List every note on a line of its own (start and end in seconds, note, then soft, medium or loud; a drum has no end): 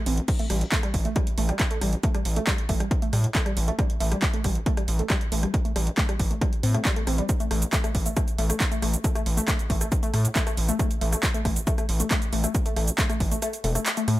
0.06 0.20 A1 loud
0.06 0.13 C4 medium
0.06 open hi-hat medium
0.17 closed hi-hat medium
0.28 kick loud
0.28 closed hi-hat medium
0.28 crash medium
0.39 0.46 A3 medium
0.39 closed hi-hat medium
0.50 0.64 A1 loud
0.50 0.54 G3 medium
0.50 cross-stick medium
0.50 open hi-hat loud
0.61 closed hi-hat medium
0.72 0.79 A3 medium
0.72 kick loud
0.72 clap loud
0.72 closed hi-hat medium
0.83 0.87 G3 medium
0.83 cross-stick medium
0.83 closed hi-hat medium
0.94 1.08 A1 medium
0.94 kick medium
0.94 open hi-hat medium
1.05 1.12 A3 medium
1.05 closed hi-hat medium
1.16 1.20 G3 medium
1.16 kick loud
1.16 cross-stick medium
1.16 closed hi-hat medium
1.27 closed hi-hat medium
1.38 1.51 A1 loud
1.38 1.44 A3 medium
1.38 open hi-hat loud
1.49 1.53 G3 medium
1.49 cross-stick medium
1.49 closed hi-hat medium
1.59 kick loud
1.59 clap loud
1.59 closed hi-hat medium
1.71 1.77 A3 medium
1.71 closed hi-hat medium
1.81 1.95 A1 medium
1.81 1.86 G3 medium
1.81 cross-stick medium
1.81 open hi-hat medium
1.93 closed hi-hat medium
2.03 2.10 A3 medium
2.03 kick loud
2.03 closed hi-hat medium
2.15 2.18 G3 medium
2.15 cross-stick medium
2.15 closed hi-hat medium
2.25 2.39 A1 medium
2.25 open hi-hat loud
2.36 2.43 A3 medium
2.36 closed hi-hat medium
2.47 2.51 G3 medium
2.47 kick loud
2.47 cross-stick medium
2.47 clap loud
2.47 closed hi-hat medium
2.58 closed hi-hat medium
2.69 2.83 A1 medium
2.69 2.76 A3 medium
2.69 kick medium
2.69 open hi-hat medium
2.80 2.84 G3 medium
2.80 cross-stick medium
2.80 closed hi-hat medium
2.91 kick loud
2.91 closed hi-hat medium
3.02 3.09 A3 medium
3.02 closed hi-hat medium
3.13 3.27 A2 loud
3.13 3.17 G3 medium
3.13 cross-stick medium
3.13 open hi-hat loud
3.24 closed hi-hat medium
3.35 3.42 A3 medium
3.35 kick loud
3.35 clap loud
3.35 closed hi-hat medium
3.46 3.50 G3 medium
3.46 cross-stick medium
3.46 closed hi-hat medium
3.57 3.70 A1 medium
3.57 open hi-hat loud
3.68 3.74 A3 medium
3.68 closed hi-hat medium
3.79 3.83 G3 medium
3.79 kick loud
3.79 cross-stick medium
3.79 closed hi-hat medium
3.90 closed hi-hat medium
4.00 4.14 A1 loud
4.00 4.07 A3 medium
4.00 open hi-hat loud
4.12 4.16 G3 medium
4.12 cross-stick medium
4.12 closed hi-hat medium
4.22 kick loud
4.22 clap loud
4.22 closed hi-hat medium
4.34 4.40 A3 medium
4.34 closed hi-hat medium
4.44 4.58 A1 medium
4.44 4.48 G3 medium
4.44 kick medium
4.44 cross-stick medium
4.44 open hi-hat loud
4.55 closed hi-hat medium
4.66 4.73 A3 medium
4.66 kick loud
4.66 closed hi-hat medium
4.77 4.81 G3 medium
4.77 cross-stick medium
4.77 closed hi-hat medium
4.88 5.02 A1 loud
4.88 open hi-hat loud
4.99 5.06 A3 medium
4.99 closed hi-hat medium
5.10 5.14 G3 medium
5.10 kick loud
5.10 cross-stick medium
5.10 clap loud
5.10 closed hi-hat medium
5.21 closed hi-hat medium
5.32 5.46 A1 medium
5.32 5.39 A3 medium
5.32 open hi-hat loud
5.43 5.47 G3 medium
5.43 cross-stick medium
5.43 closed hi-hat medium
5.54 kick loud
5.54 closed hi-hat medium
5.65 5.71 A3 medium
5.65 closed hi-hat medium
5.76 5.89 A1 medium
5.76 5.80 G3 medium
5.76 cross-stick medium
5.76 open hi-hat loud
5.87 closed hi-hat soft
5.98 6.04 A3 medium
5.98 kick loud
5.98 clap loud
5.98 closed hi-hat medium
6.09 6.13 G3 medium
6.09 cross-stick medium
6.09 closed hi-hat medium
6.20 6.33 A1 medium
6.20 kick medium
6.20 open hi-hat loud
6.31 6.37 A3 medium
6.31 closed hi-hat medium
6.41 6.45 G3 medium
6.41 kick loud
6.41 cross-stick medium
6.41 closed hi-hat medium
6.53 closed hi-hat medium
6.63 6.77 A2 loud
6.63 6.70 C4 medium
6.63 open hi-hat loud
6.74 6.81 A3 medium
6.74 cross-stick medium
6.74 closed hi-hat medium
6.85 6.92 G3 medium
6.85 kick loud
6.85 clap loud
6.85 closed hi-hat medium
6.96 7.03 A3 medium
6.96 closed hi-hat medium
7.07 7.21 A1 medium
7.07 7.17 C4 medium
7.07 cross-stick medium
7.07 open hi-hat medium
7.18 7.25 G3 medium
7.18 closed hi-hat medium
7.29 kick loud
7.29 closed hi-hat medium
7.29 shaker medium
7.40 7.47 A3 medium
7.40 closed hi-hat soft
7.40 shaker soft
7.51 7.65 A1 loud
7.51 7.58 A3 medium
7.51 cross-stick medium
7.51 open hi-hat loud
7.62 closed hi-hat soft
7.62 shaker medium
7.73 7.79 A3 medium
7.73 kick loud
7.73 clap loud
7.73 closed hi-hat medium
7.73 shaker medium
7.84 7.90 A3 medium
7.84 cross-stick medium
7.84 closed hi-hat soft
7.84 shaker soft
7.95 8.08 A1 medium
7.95 kick medium
7.95 open hi-hat medium
8.06 8.12 A3 medium
8.06 closed hi-hat medium
8.06 shaker medium
8.17 8.23 A3 medium
8.17 kick loud
8.17 cross-stick medium
8.17 closed hi-hat medium
8.17 shaker medium
8.28 closed hi-hat soft
8.28 shaker soft
8.38 8.52 A1 loud
8.38 8.45 A3 medium
8.38 open hi-hat loud
8.50 8.56 A3 medium
8.50 cross-stick medium
8.50 closed hi-hat medium
8.50 shaker medium
8.60 kick loud
8.60 clap loud
8.60 closed hi-hat medium
8.60 shaker medium
8.72 8.78 A3 medium
8.72 closed hi-hat soft
8.72 shaker soft
8.82 8.96 A1 medium
8.82 8.89 A3 medium
8.82 cross-stick medium
8.82 open hi-hat medium
8.94 closed hi-hat soft
8.94 shaker medium
9.04 9.11 A3 medium
9.04 kick loud
9.04 closed hi-hat medium
9.04 shaker medium
9.15 9.22 A3 medium
9.15 cross-stick medium
9.15 closed hi-hat soft
9.15 shaker soft
9.26 9.40 A1 medium
9.26 open hi-hat loud
9.37 9.44 A3 medium
9.37 closed hi-hat soft
9.37 shaker medium
9.48 9.55 A3 medium
9.48 kick loud
9.48 cross-stick medium
9.48 clap loud
9.48 closed hi-hat medium
9.48 shaker medium
9.59 closed hi-hat soft
9.59 shaker soft
9.70 9.84 A1 medium
9.70 9.77 A3 medium
9.70 kick medium
9.70 open hi-hat medium
9.81 9.87 A3 medium
9.81 cross-stick medium
9.81 closed hi-hat medium
9.81 shaker medium
9.92 kick loud
9.92 closed hi-hat medium
9.92 shaker medium
10.03 10.09 A3 medium
10.03 closed hi-hat medium
10.03 shaker soft
10.14 10.27 A2 loud
10.14 10.20 A3 medium
10.14 cross-stick medium
10.14 open hi-hat loud
10.25 closed hi-hat medium
10.25 shaker medium
10.36 10.42 A3 medium
10.36 kick loud
10.36 clap loud
10.36 closed hi-hat medium
10.36 shaker medium
10.47 10.53 A3 medium
10.47 cross-stick medium
10.47 closed hi-hat soft
10.47 shaker soft
10.57 10.71 A1 medium
10.57 open hi-hat medium
10.69 10.75 A3 medium
10.69 closed hi-hat soft
10.69 shaker medium
10.79 10.86 A3 medium
10.79 kick loud
10.79 cross-stick medium
10.79 closed hi-hat medium
10.79 shaker medium
10.91 closed hi-hat medium
10.91 shaker soft
11.01 11.15 A1 loud
11.01 11.08 A3 medium
11.01 open hi-hat loud
11.12 11.19 A3 medium
11.12 cross-stick medium
11.12 closed hi-hat medium
11.12 shaker medium
11.23 kick loud
11.23 clap loud
11.23 closed hi-hat medium
11.23 shaker medium
11.34 11.41 A3 medium
11.34 closed hi-hat medium
11.34 shaker soft
11.45 11.59 A1 medium
11.45 11.52 A3 medium
11.45 kick medium
11.45 cross-stick medium
11.45 open hi-hat medium
11.56 closed hi-hat medium
11.56 shaker medium
11.67 11.74 A3 medium
11.67 kick loud
11.67 closed hi-hat medium
11.67 shaker medium
11.78 11.84 A3 medium
11.78 cross-stick medium
11.78 closed hi-hat medium
11.78 shaker soft
11.89 12.03 A1 loud
11.89 open hi-hat loud
12.00 12.06 A3 medium
12.00 closed hi-hat medium
12.00 shaker medium
12.11 12.17 A3 medium
12.11 kick loud
12.11 cross-stick medium
12.11 clap loud
12.11 closed hi-hat medium
12.11 shaker medium
12.22 closed hi-hat medium
12.22 shaker soft
12.33 12.46 A1 medium
12.33 12.39 A3 medium
12.33 open hi-hat medium
12.44 12.50 A3 medium
12.44 cross-stick medium
12.44 closed hi-hat medium
12.44 shaker medium
12.55 kick loud
12.55 closed hi-hat medium
12.55 shaker medium
12.66 12.72 A3 medium
12.66 closed hi-hat medium
12.66 shaker soft
12.76 12.90 A1 medium
12.76 12.83 A3 medium
12.76 cross-stick medium
12.76 open hi-hat loud
12.88 closed hi-hat medium
12.88 shaker medium
12.98 13.05 A3 medium
12.98 kick loud
12.98 clap loud
12.98 closed hi-hat medium
12.98 shaker medium
13.10 13.16 A3 medium
13.10 cross-stick medium
13.10 closed hi-hat medium
13.10 shaker soft
13.20 13.34 A1 medium
13.20 kick medium
13.20 open hi-hat medium
13.32 13.38 A3 medium
13.32 closed hi-hat medium
13.32 shaker medium
13.42 13.49 A3 medium
13.42 cross-stick medium
13.42 closed hi-hat medium
13.42 shaker medium
13.53 closed hi-hat medium
13.53 shaker soft
13.64 13.78 E1 loud
13.64 13.71 A3 medium
13.64 open hi-hat loud
13.75 13.82 A3 medium
13.75 cross-stick medium
13.75 closed hi-hat medium
13.75 shaker medium
13.86 clap loud
13.86 closed hi-hat medium
13.86 shaker medium
13.97 14.04 A3 medium
13.97 closed hi-hat medium
13.97 shaker soft
14.08 14.20 A2 medium
14.08 14.15 A3 medium
14.08 cross-stick medium
14.08 open hi-hat medium